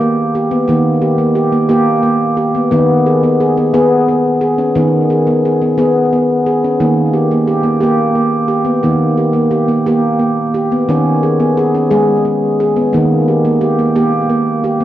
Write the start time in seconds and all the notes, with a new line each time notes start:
0.01 A#3
0.35 G4
0.51 B3
0.68 D#3 A#3
1.02 G4
1.18 A#3
1.35 G4
1.52 A#3
1.69 A#3 G4
2.03 A#3
2.37 G4
2.55 B3
2.71 D#3 B3
3.06 G#4
3.23 B3
3.40 G#4
3.57 B3
3.74 B3 G#4
4.08 B3
4.41 G#4
4.58 C#4
4.75 D#3 B3
5.10 G#4
5.27 B3
5.45 G#4
5.61 B3
5.78 B3 G#4
6.13 B3
6.46 G#4
6.64 C#4
6.80 D#3 A#3
7.13 G4
7.31 A#3
7.47 G4
7.63 A#3
7.81 A#3 G4
8.15 A#3
8.48 G4
8.65 B3
8.83 D#3 A#3
9.17 G4
9.33 A#3
9.51 G4
9.68 A#3
9.86 A#3 G4
10.19 A#3
10.54 G4
10.72 B3
10.89 D#3 C#4
11.23 G#4
11.40 B3
11.57 G#4
11.75 C#4
11.91 G#3 G#4
12.25 C#4
12.60 G#4
12.76 B3
12.93 D#3 A#3
13.28 G4
13.45 A#3
13.61 G4
13.79 A#3
13.96 A#3 G4
14.30 A#3
14.64 G4
14.80 B3